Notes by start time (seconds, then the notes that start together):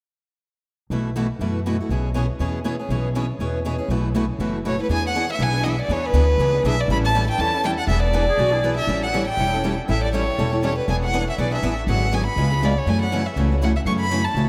0.90 B1 B2 E3 A3 E4 F#4 B4
1.16 B2 E3 A3 E4 F#4 B4
1.39 F#2 B2 E3 A3 E4 F#4 B4
1.66 B2 E3 A3 E4 F#4 B4
1.80 A3 E4 F#4
1.89 B1 B2 E3 B3 C#4 E4 G#4 C#5
2.14 B2 E3 B3 C#4 E4 G#4 C#5
2.40 E2 B2 E3 B3 C#4 E4 G#4 C#5
2.64 B2 E3 B3 C#4 E4 G#4 C#5
2.79 B3 C#4 G#4
2.89 B1 B2 E3 B3 C#4 E4 G#4 C#5
3.15 B2 E3 B3 C#4 E4 G#4 C#5
3.39 E2 B2 E3 B3 C#4 E4 G#4 C#5
3.65 B2 E3 B3 C#4 E4 G#4 C#5
3.78 B3 C#4 G#4
3.88 B1 B2 E3 A3 E4 F#4 B4
4.14 B2 E3 A3 E4 F#4 B4
4.39 F#1 B2 E3 A3 E4 F#4 B4
4.65 B2 E3 A3 E4 F#4 B4 C#5
4.78 A3 E4 F#4 B4
4.89 E2 E3 B3 D4 G#4 B4 G#5
5.07 F#5
5.15 E3 B3 D4 G#4 B4
5.32 E5
5.39 B1 E3 B3 D4 G#4 B4 G#5
5.52 B3 D4 G#4
5.64 E3 B3 D4 G#4 B4 D#5
5.68 E5
5.81 D5
5.88 E2 E3 B3 D4 G#4 B4 C#5
6.05 B4
6.13 D2 E3 B3 D4 G#4 B4
6.38 C#2 E3 B3 D4 G#4 B4
6.53 B3 D4 G#4
6.64 B1 E3 B3 D4 G#4 B4
6.68 E5
6.80 D5
6.88 A1 E3 G3 C#4 E4 A4 B5
7.05 A5
7.15 E3 G3 C#4 E4 A4
7.30 G5
7.39 E2 E3 G3 C#4 E4 A4 A5
7.53 C#4 E4 A4
7.64 E3 G3 C#4 E4 A4 G5
7.78 F#5
7.87 E1 E3 B3 D4 G#4 B4 E5
8.03 D5
8.13 E3 B3 D4 G#4 B4
8.29 G#4
8.38 B1 E3 B3 D4 F#4 G#4 B4
8.52 B3 D4 E4 G#4
8.63 E3 B3 D4 G#4 B4
8.78 E5
8.87 A1 E3 G3 C#4 E4 A4
9.03 F#5
9.14 E3 G3 C#4 E4 A4
9.28 G5
9.37 E1 E3 G3 C#4 E4 A4
9.54 C#4 E4 A4
9.64 E3 G3 C#4 E4 A4
9.89 A1 E3 G3 C#4 E4 A4 E5
10.03 D5
10.13 E3 G3 C#4 E4 A4 C#5
10.38 E1 E3 G3 C#4 E4 A4
10.52 C#4 E4 A4
10.64 E3 G3 C#4 E4 A4 C#5
10.78 B4
10.88 E1 E3 B3 D4 G#4 B4 G#5
11.04 F#5
11.13 E3 B3 D4 G#4 B4
11.30 E5
11.38 B1 E3 B3 D4 G#4 B4 D5
11.51 B3 D4 G#4 E5
11.63 A1 E3 B3 D4 G#4 B4
11.87 G#1 D3 F#3 B3 F#4 G#4 F#5
12.13 D3 F#3 B3 F#4 G#4 G#5
12.27 B5
12.36 C#2 C#3 G#3 B3 F4 G#4
12.51 B3 F4 G#4
12.63 C#3 G#3 B3 F4 G#4 D5
12.78 C#5
12.86 F#2 C#3 E3 F#3 A3 C#4 E4 F#4 A4 G#5
13.02 F#5
13.12 C#3 E3 F#3 A3 C#4 E4 F#4 A4
13.26 E5
13.36 C#2 C#3 E3 F#3 A3 C#4 E4 F#4 A4
13.51 A3 C#4 F#4
13.62 C#3 E3 F#3 A3 C#4 E4 F#4 A4 F#5
13.76 E5
13.85 F#2 C#3 E3 F#3 A3 C#4 E4 F#4 A4 C#6
14.00 B5
14.11 C#3 E3 F#3 A3 C#4 E4 F#4 A4
14.25 A5
14.35 C#2 C#3 E3 F#3 A3 C#4 E4 F#4 A4